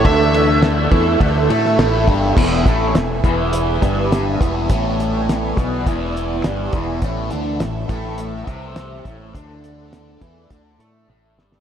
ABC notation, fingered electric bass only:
X:1
M:4/4
L:1/8
Q:1/4=103
K:Emix
V:1 name="Fingered electric bass" clef=bass
D,,3 E,, D,, A,, A,,, =G,,, | E,,, A,,, E,,, E,,,2 =G,,,2 E,,, | A,,,3 B,,, E,,,2 =G,,, E,,, | A,,, D,, A,,, A,,,2 =C,,2 A,,, |
D,,3 E,, D,, A,, A,,, =G,,, |]